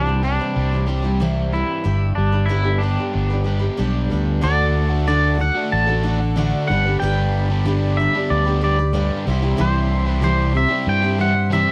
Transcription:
Already playing: C2 C3 E3 G3 D4
0.06 G3 C4 E4 C5
0.23 G3 C4 D4 E4 G4 C5
0.39 G3 C4 E4 C5
0.55 C2 G3
0.73 G3 C4 E4 C5
0.86 G3 C4 E4 G4 C5
1.02 G3 C4 E4 C5
1.20 C3 E3 G3 C4 E4 C5
1.53 E3 G3 C4 E4 C5
1.84 G1 G2 G3 D4 G4 B4
2.15 G1 G3 D4
2.32 D4 G4 B4
2.46 G3 B3 D4 E4
2.50 G4 B4
2.63 D4 G4 B4
2.78 G3 D4
2.82 G4 B4
2.98 D4 G4 B4
3.13 G1 B3
3.30 D4 G4 B4
3.44 G3 D4 G4 B4
3.59 D4 G4 B4
3.77 B1 G3 D4 G4 B4
4.10 D2 G3 D4 G4 B4
4.41 D2 D3 A3 D4 F#4 A4 D5 F#5 D6
4.90 A3 D4 F#4
5.07 D3 A3 D4 F#4 A4 D5
5.38 A3 D4 F#4 A4 F#5, muted overdriven electric guitar stroke
5.55 A3 D4 F#4
5.72 A1 A5
5.87 A3 D4 F#4 A4
6.03 D3 A3 D4 F#4 A4
6.21 muted overdriven electric guitar stroke
6.36 D3 A3 D4 F#4 A4
6.68 G1 G2 D3 G3 B3 D4 G4 B4 D5 F#5 B5
6.86 G3 B3 D4 G4 B4
7.00 G1 G2 D3 G3 B3 D4 G4 B4 G5
7.50 G3 B3 D4 G4
7.65 G2 D3 G3 B3 D4 G4 B4
7.97 G3 D4 E5, muted overdriven electric guitar stroke
8.01 G4 B4
8.14 G3 B3 D4 G4 B4
8.30 D2 D5
8.45 G3 B3 D4 G4 B4
8.61 G3 B3 D4 G4 B4 D5
8.78 D4 G4 B4, muted overdriven electric guitar stroke
8.93 G2 D3 G3 B3 D4 G4 B4
9.25 C2 C3 E3 G3 C4 E4 G4 E5 C6
9.30 C5
9.42 G3 C4 E4 G4 C5
9.57 C2 C3 E3 G3 C4 E4 G4 C5
9.61 C5
10.06 G3 E4 G4 B4
10.22 C3 E3 G3 C4 E4 G4 C5
10.54 G3 C4 E4 C5 E5, muted overdriven electric guitar stroke
10.68 G3 C4 E4 G4 C5
10.87 G2 G5
11.02 G3 C4 E4 G4 C5
11.18 E3 G3 C4 E4 G4 C5 F#5
11.34 muted overdriven electric guitar stroke
11.52 C3 E3 G3 C4 E4 G4 C5 E5

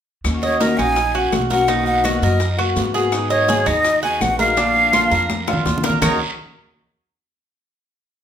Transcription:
0.24 D#2 D#3 A#3 C#4 F#4, high bongo, high conga, long guiro, claves, maracas
0.43 C#5 D#5, high bongo, high conga, maracas
0.60 D#3 A#3 C#4 F#4 A#4 D#5, high bongo, high conga, short guiro, maracas
0.77 A#1 A#3 C#4 D#4 F#4 G#5, high bongo, high conga, short guiro, claves, maracas
0.96 muted steel-string acoustic guitar stroke, high bongo, high conga, long guiro, maracas
1.15 A#3 C#4 F#4, high conga, maracas
1.32 B1 D#3 A#3 C#4 F#4, high bongo, low bongo, high conga, short guiro, claves, maracas
1.50 A#3 C#4 F#4 A#4 F#5, high bongo, high conga, short guiro, maracas
1.67 B2 D#3 A#3 B3 D#4 F#4, high bongo, high conga, long guiro, maracas
1.86 F#5, high bongo, high conga, maracas
2.04 B2 D#3 A#3 B3 F#4 D#5, high bongo, high conga, short guiro, claves, maracas
2.22 F#2 A#3 B3 F#4 A#4 D#5, high bongo, high conga, short guiro, maracas
2.40 muted steel-string acoustic guitar stroke, high bongo, high conga, long guiro, maracas
2.57 A#3 B3 F#4, high conga, claves, maracas
2.76 G#2 D#3 A#3 B3 F#4, high bongo, low bongo, high conga, short guiro, maracas
2.94 D#3 A#3 B3 F#4 G#4, high bongo, high conga, short guiro, maracas
3.12 D#3 F#3 B3 D#4 G#4, high bongo, high conga, long guiro, claves, maracas
3.30 C#5 D#5, high bongo, high conga, maracas
3.48 D#3 F#3 B3 D#4 G#4, high bongo, high conga, short guiro, maracas
3.66 D#2 B3 D#4 G#4 D#5, high bongo, high conga, short guiro, claves, maracas
3.85 muted steel-string acoustic guitar stroke, high bongo, high conga, long guiro, maracas
4.03 B3 D#4 F#4 G#4 G#5, high conga, maracas
4.21 A#1 F#3 B3 D#4 G#4 F#5, high bongo, low bongo, high conga, short guiro, claves, maracas
4.39 F#3 B3 D#4 G#4 A#4 F5, high bongo, high conga, short guiro, maracas
4.57 D3 A#3 D4 F4, high bongo, high conga, long guiro, maracas
4.75 high bongo, high conga, maracas
4.93 D3 A#3 D4 F4, high bongo, high conga, short guiro, claves, maracas
5.11 F2 A#3 D4 F4 A#4, high bongo, high conga, short guiro, maracas
5.29 muted steel-string acoustic guitar stroke, high bongo, high conga, long guiro, maracas
5.48 A#3 D4 F4, high bongo, claves, maracas
5.53 low conga
5.65 D#2 D3 A#3 D4 F4, high bongo, low conga, short guiro, maracas
5.78 low conga
5.83 A#3 D4 F4 A#4, low bongo, short guiro, maracas
5.90 low conga
6.02 D#2 D#3 A#3 C#4 D#4 F#4 A#4 C#5 A#5, low bongo, low conga, long guiro, claves, maracas

